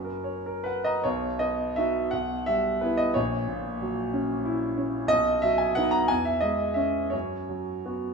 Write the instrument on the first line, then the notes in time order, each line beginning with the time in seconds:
grand piano
Already playing: F#2
0.04 A#4
0.24 C#5
0.46 A#4
0.64 B4 F#5
0.84 D#5 A#5
1.04 B1 C#5
1.39 B3 D#5
1.76 D#4 F#4 E5
2.11 B1 F#5
2.46 G3 E5
2.81 B3 E4 B4
2.97 D#5
3.14 A#1 C#5
3.48 A#2
3.82 F#3
4.13 C#4
4.45 E4
4.78 C#4
5.08 B1 D#5
5.42 F#3 E5
5.58 G#5
5.75 B3 D#4 F#5
5.91 A#5
6.08 E2 G#5
6.25 E5
6.41 G#3 D#5
6.74 C#4 E5
7.10 F#2 C#5
7.49 F#3
7.86 B3 F#4